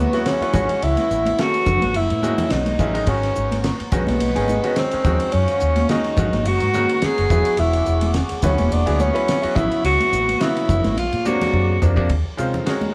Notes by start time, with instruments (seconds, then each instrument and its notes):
Already playing: tenor saxophone B3, analog synth pad G#4 F#5 C#6 D6
0.13 grand piano F#3 B3 E4 F#4, snare, ride
0.26 tenor saxophone C#4, snare, ride
0.41 grand piano F#3 B3 E4 B4, muted fingered electric bass stroke, ride
0.53 fingered electric bass A1, grand piano E3 G#3 C#4 F#4, analog synth pad B4, kick, hi-hat pedal, low conga
0.69 ride
0.82 fingered electric bass C#2, tenor saxophone E4, ride
0.97 snare, ride, high conga
1.11 fingered electric bass A1, hi-hat pedal
1.25 ride, high conga
1.38 grand piano D#3 C#4 G#4 A4, tenor saxophone F#4, snare, ride
1.54 ride
1.66 fingered electric bass F#1, kick, hi-hat pedal, low conga
1.82 fingered electric bass A1, ride, high conga
1.94 fingered electric bass F#1, tenor saxophone E4, ride
2.10 fingered electric bass A2, ride
2.22 grand piano D#3 G#3 C#4 F#4, hi-hat pedal, high conga
2.38 ride, low conga
2.50 fingered electric bass B1, tenor saxophone D#4, snare, ride
2.66 ride, high conga
2.79 fingered electric bass A1, grand piano D#3 G#3 C#4 E4, kick, hi-hat pedal, low conga
2.93 grand piano D#3 G#3 C#4 D#4, ride
3.07 fingered electric bass G#1, grand piano D#3 G#3 C#4 F#4, tenor saxophone C#4, analog synth pad B4 A#5 C#6, kick, ride
3.23 snare, ride
3.35 fingered electric bass G#1, hi-hat pedal
3.52 snare, ride, high conga
3.64 snare, ride
3.80 muted fingered electric bass stroke, ride
3.91 fingered electric bass B1, grand piano D#3 G#3 C#4 F#4, tenor saxophone B3, analog synth pad G#4 D#5 C#6, kick, hi-hat pedal, low conga
4.07 fingered electric bass B1, snare, ride, high conga
4.20 fingered electric bass B1, ride
4.35 fingered electric bass G#1, grand piano D#3 G#3 C#4 G#4, ride
4.48 hi-hat pedal, high conga
4.64 grand piano D#3 G#3 C#4 F#4, ride
4.76 tenor saxophone C4, snare, ride
4.91 grand piano D#3 G#3 C#4 G#4, muted fingered electric bass stroke, ride
5.04 fingered electric bass D#2, grand piano D#3 G#3 C#4 F#4, analog synth pad F#4 F5, kick, snare, hi-hat pedal, low conga
5.20 ride
5.32 fingered electric bass F#2, tenor saxophone C#4, ride
5.48 snare, ride
5.60 fingered electric bass D#2, hi-hat pedal
5.76 snare, ride, high conga
5.89 grand piano D#3 G#3 C#4 F#4, tenor saxophone D#4, snare, ride
6.04 snare, ride
6.17 fingered electric bass G#1, grand piano D#3 G#3 C#4 F#4, analog synth pad B4 F#5 A#5, kick, hi-hat pedal, low conga
6.33 fingered electric bass G#1, snare, ride, high conga
6.45 fingered electric bass F#1, tenor saxophone F#4, ride
6.60 fingered electric bass G#2, ride
6.74 grand piano D#3 G#3 C#4 F#4, hi-hat pedal, high conga
6.89 ride
7.02 tenor saxophone G#4, muted fingered electric bass stroke, snare, ride
7.18 fingered electric bass F#1, ride
7.30 fingered electric bass E1, grand piano F#3 B3 E4 G#4, analog synth pad G#4 D6, kick, hi-hat pedal, low conga
7.45 ride
7.57 fingered electric bass E1, tenor saxophone E4, ride
7.73 snare, ride
7.86 fingered electric bass E1, hi-hat pedal
8.01 snare, ride, high conga
8.14 snare, ride
8.29 muted fingered electric bass stroke, snare, ride
8.42 fingered electric bass D2, grand piano F#3 B3 E4 B4, tenor saxophone C#4, kick, hi-hat pedal, low conga
8.58 fingered electric bass E1, snare, ride, high conga
8.72 fingered electric bass E1, tenor saxophone D4, ride
8.86 fingered electric bass D2, grand piano F#3 B3 E4 G#4, ride
8.99 tenor saxophone C#4, hi-hat pedal, high conga
9.13 grand piano F#3 B3 E4 B4, ride
9.28 snare, ride
9.42 grand piano F#3 B3 E4 F#4, muted fingered electric bass stroke, ride
9.55 fingered electric bass A1, grand piano C#3 F#3 B3 E4, tenor saxophone E4, analog synth pad B4, kick, snare, hi-hat pedal, low conga
9.71 ride
9.84 fingered electric bass C#2, tenor saxophone F#4, ride
10.00 ride, high conga
10.13 fingered electric bass A1, hi-hat pedal
10.28 ride, high conga
10.40 grand piano C#3 F#3 B3 F#4, tenor saxophone E4, snare, ride
10.57 snare, ride
10.69 fingered electric bass F#1, kick, hi-hat pedal, low conga
10.84 fingered electric bass G#1, snare, ride, high conga
10.98 fingered electric bass A#1, tenor saxophone F4, analog synth pad G#4 D6, ride
11.13 fingered electric bass A#2, ride
11.25 grand piano C3 F#3 A#3 D4, tenor saxophone F#4, hi-hat pedal, high conga
11.41 snare, ride, low conga
11.54 fingered electric bass F#2, kick
11.82 fingered electric bass F2, grand piano C3 F3 A#3 D4, hi-hat pedal, mid tom, low conga
11.96 grand piano C3 F3 A#3 D4, kick
12.10 fingered electric bass D#2, kick, ride
12.37 fingered electric bass C3, grand piano D#3 G#3 C4 C#4 F4 C5, hi-hat pedal, ride
12.54 low conga
12.66 grand piano D#3 G#3 C#4 F#4 A#4 C#5, snare, ride
12.70 grand piano C#4 G#4
12.81 high conga